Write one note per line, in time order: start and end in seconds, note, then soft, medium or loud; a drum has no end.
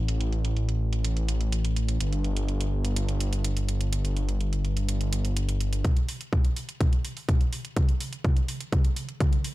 0.00 1.98 A1 medium
0.08 closed hi-hat medium
0.21 closed hi-hat soft
0.33 closed hi-hat soft
0.45 closed hi-hat soft
0.57 closed hi-hat soft
0.69 closed hi-hat soft
0.93 closed hi-hat soft
1.05 closed hi-hat medium
1.17 closed hi-hat soft
1.28 closed hi-hat medium
1.41 closed hi-hat soft
1.52 closed hi-hat medium
1.65 closed hi-hat soft
1.76 closed hi-hat soft
1.89 closed hi-hat soft
2.00 5.82 G1 medium
2.00 closed hi-hat medium
2.13 closed hi-hat soft
2.24 closed hi-hat soft
2.37 closed hi-hat soft
2.49 closed hi-hat soft
2.61 closed hi-hat soft
2.85 closed hi-hat soft
2.96 closed hi-hat medium
3.09 closed hi-hat soft
3.20 closed hi-hat medium
3.33 closed hi-hat soft
3.44 closed hi-hat medium
3.57 closed hi-hat soft
3.69 closed hi-hat soft
3.81 closed hi-hat soft
3.93 closed hi-hat medium
4.05 closed hi-hat soft
4.17 closed hi-hat soft
4.29 closed hi-hat soft
4.41 closed hi-hat soft
4.53 closed hi-hat soft
4.65 closed hi-hat soft
4.77 closed hi-hat soft
4.89 closed hi-hat medium
5.01 closed hi-hat soft
5.13 closed hi-hat medium
5.25 closed hi-hat soft
5.37 closed hi-hat medium
5.49 closed hi-hat soft
5.61 closed hi-hat medium
5.73 closed hi-hat soft
5.85 kick loud
5.85 closed hi-hat medium
5.85 mid tom soft
5.97 closed hi-hat soft
6.09 open hi-hat loud
6.21 closed hi-hat soft
6.33 kick loud
6.33 closed hi-hat soft
6.33 mid tom soft
6.45 closed hi-hat soft
6.56 open hi-hat loud
6.69 closed hi-hat soft
6.81 kick loud
6.81 closed hi-hat medium
6.81 mid tom soft
6.93 closed hi-hat soft
7.05 open hi-hat loud
7.17 open hi-hat medium
7.29 kick loud
7.29 closed hi-hat medium
7.29 mid tom medium
7.41 closed hi-hat soft
7.53 open hi-hat loud
7.65 closed hi-hat soft
7.77 kick loud
7.77 closed hi-hat medium
7.77 mid tom medium
7.89 closed hi-hat soft
8.01 open hi-hat loud
8.13 closed hi-hat soft
8.24 kick loud
8.24 closed hi-hat soft
8.24 mid tom medium
8.37 closed hi-hat soft
8.48 open hi-hat loud
8.61 closed hi-hat soft
8.72 kick loud
8.72 closed hi-hat medium
8.72 mid tom medium
8.85 closed hi-hat soft
8.96 open hi-hat loud
9.09 closed hi-hat soft
9.20 kick loud
9.20 closed hi-hat medium
9.20 mid tom medium
9.33 closed hi-hat soft
9.44 open hi-hat loud